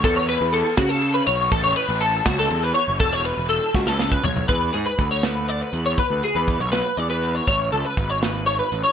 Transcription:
<<
  \new Staff \with { instrumentName = "Clean electric guitar" } { \time 6/8 \key e \mixolydian \tempo 4. = 81 a'16 cis''16 b'8 a'8 fis'16 a'8 b'16 cis''8 | a'16 cis''16 b'8 a'8 fis'16 a'8 b'16 cis''8 | a'16 cis''16 b'8 a'8 fis'16 a'8 b'16 cis''8 | b'8 gis'16 b'8 cis''16 b'8 d''16 b'8 cis''16 |
b'8 gis'16 b'8 cis''16 b'8 d''16 b'8 cis''16 | cis''8 a'16 b'8 cis''16 b'8 cis''16 b'8 cis''16 | }
  \new Staff \with { instrumentName = "Picked electric bass" } { \clef bass \time 6/8 \key e \mixolydian e,8. e,8 r16 cis4 b,,8 | a,,8 r16 a,,8. cis,8 e,8 r16 fis,,16 | e,,8. e,,8 r16 cis,4 b,,8 | e,8 gis,16 r16 d,4. e,8 |
r16 d,16 r16 e,8 b,,8 r16 e,4 | a,,8 cis,16 r16 gis,,4. a,,16 r16 | }
  \new DrumStaff \with { instrumentName = "Drums" } \drummode { \time 6/8 <bd cymr>8 cymr8 cymr8 <bd cymr sn>8 cymr8 cymr8 | <bd cymr>8 cymr8 cymr8 <bd cymr sn>8 cymr8 cymr8 | <bd cymr>8 cymr8 cymr8 <bd sn>16 sn16 sn16 bd16 tomfh16 tomfh16 | <hh bd>8 hh8 <hh bd>8 <hh sn>8 hh8 hh8 |
<hh bd>8 hh8 <hh bd>8 <hh sn>8 hh8 hh8 | <hh bd>8 hh8 <hh bd>8 <hh sn>8 hh8 hh8 | }
>>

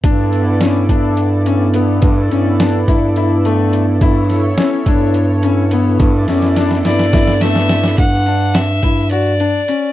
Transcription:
<<
  \new Staff \with { instrumentName = "Violin" } { \time 7/8 \key e \dorian \tempo 4 = 106 r2. r8 | r2. r8 | r2. r8 | r4. d''4 e''4 |
fis''4 e''4 d''4. | }
  \new Staff \with { instrumentName = "Analog synth pad" } { \time 7/8 \key e \dorian <b e' a' d''>2.~ <b e' a' d''>8 | <b e' a' d''>2.~ <b e' a' d''>8 | <b e' a' cis''>2.~ <b e' a' cis''>8 | <b e' a' d''>2.~ <b e' a' d''>8 |
r2. r8 | }
  \new Staff \with { instrumentName = "Grand piano" } { \time 7/8 \key e \dorian d'4 cis'8 d'4 cis'8 b8~ | b8 cis'8 d'8 e'8 e'8 a4 | e'4 cis'8 d'4 cis'8 b8~ | b8 cis'8 d'8 e'8 e'8 a4 |
r8 d'4 e'8 fis'8 d'8 cis'8 | }
  \new Staff \with { instrumentName = "Bass clarinet" } { \clef bass \time 7/8 \key e \dorian g,4. g,2 | g,8 g,4 g,2 | g,4 r8 g,2 | g,8 fis,4 g,2 |
g,4. g,4. r8 | }
  \new DrumStaff \with { instrumentName = "Drums" } \drummode { \time 7/8 <hh bd>8 hh8 <hh sn>8 <hh bd>8 hh8 hh8 hh8 | <hh bd>8 hh8 <hh sn>8 <hh bd>8 hh8 hh8 hh8 | <hh bd>8 <hh sn>8 <hh sn>8 <hh bd>8 hh8 hh8 hh8 | <hh bd>8 <hh sn>16 sn16 <hh sn>16 sn16 <hh sn>16 sn16 <hh bd sn>16 sn16 <hh sn>16 sn16 <hh sn>16 sn16 |
<hh bd>8 hh8 <hh sn>8 <hh bd>8 hh8 hh8 hh8 | }
>>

